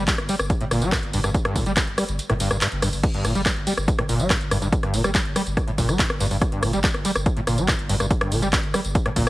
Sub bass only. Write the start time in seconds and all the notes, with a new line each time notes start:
0.18 G1
0.39 G1
0.60 G1
0.71 G1
0.82 G1
1.03 G1
1.13 G1
1.24 G1
1.45 G1
1.56 G1
1.66 G1
1.87 G1
2.08 G1
2.30 G1
2.40 G1
2.51 G1
2.72 G1
2.82 G1
2.93 G1
3.14 G1
3.25 G1
3.35 G1
3.56 G1
3.77 G1
3.98 G1
4.09 G1
4.20 G1
4.41 G1
4.51 G1
4.62 G1
4.83 G1
4.94 G1
5.04 G1
5.25 G1
5.46 G1
5.68 G1
5.78 G1
5.89 G1
6.10 G1
6.20 G1
6.31 G1
6.52 G1
6.63 G1
6.73 G1
6.94 G1
7.15 G1
7.37 G1
7.47 G1
7.58 G1
7.79 G1
7.89 G1
8.00 G1
8.21 G1
8.32 G1
8.42 G1
8.64 G1
8.85 G1
9.06 G1
9.16 G1